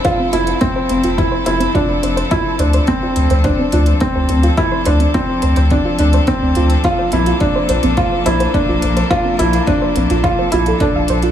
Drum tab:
HH |x-xxx-xxx-xxx-xx|x-xxx-xxx-xxx-xx|x-xxx-xxx-xxx-xx|x-xxx-xxx-xxx-xx|
BD |o---o---o---o---|o---o---o---o---|o---o---o---o---|o---o---o---o---|

HH |x-xxx-xxx-xxx-xx|
BD |o---o---o---o---|